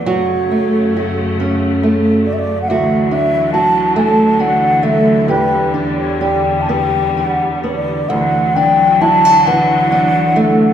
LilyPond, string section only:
\new Staff \with { instrumentName = "String section" } { \clef bass \time 6/8 \key d \major \tempo 4. = 45 <fis, cis a>2. | <d e fis>2. | <e, g>2. | <d e fis>2. | }